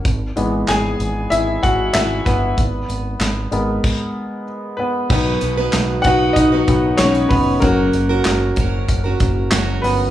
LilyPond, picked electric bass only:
\new Staff \with { instrumentName = "Picked electric bass" } { \clef bass \time 4/4 \key b \major \tempo 4 = 95 gis,,8 gis,,8 gis,,8 gis,,8 gis,,8 gis,,8 gis,,8 g,,8 | gis,,8 gis,,8 gis,,8 gis,,8 r2 | b,,8 b,,8 b,,8 b,,8 b,,8 b,,8 b,,8 eis,,8 | fis,,8 fis,,8 fis,,8 fis,,8 fis,,8 fis,,8 fis,,8 g,,8 | }